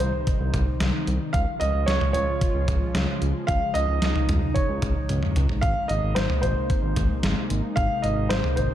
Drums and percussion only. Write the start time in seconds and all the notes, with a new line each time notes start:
0.00 closed hi-hat
0.27 kick, closed hi-hat
0.54 kick, closed hi-hat, mid tom
0.80 snare, closed hi-hat
1.07 closed hi-hat
1.34 kick, closed hi-hat
1.61 closed hi-hat
1.88 snare, closed hi-hat
2.01 mid tom
2.14 closed hi-hat
2.41 kick, closed hi-hat
2.68 kick, closed hi-hat, mid tom
2.95 snare, closed hi-hat
3.22 closed hi-hat
3.48 kick, closed hi-hat
3.75 closed hi-hat
4.02 snare, closed hi-hat
4.16 mid tom
4.29 closed hi-hat, mid tom
4.56 kick, closed hi-hat
4.82 kick, closed hi-hat, mid tom
5.09 closed hi-hat, high tom
5.23 mid tom
5.36 closed hi-hat, mid tom
5.49 floor tom
5.63 kick, closed hi-hat
5.89 closed hi-hat
6.16 snare, closed hi-hat
6.30 mid tom
6.43 closed hi-hat
6.70 kick, closed hi-hat
6.96 kick, closed hi-hat, mid tom
7.23 snare, closed hi-hat
7.50 closed hi-hat
7.77 kick, closed hi-hat
8.04 closed hi-hat
8.30 snare, closed hi-hat
8.44 mid tom
8.57 closed hi-hat